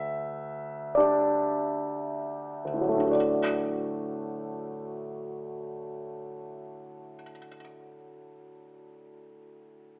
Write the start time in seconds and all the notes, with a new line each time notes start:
Already playing: D2 E5
0.95 D4 G4 D5
2.65 D2
2.74 A2
2.81 F#3
2.89 A3
2.97 D4
3.05 F#4
3.11 D5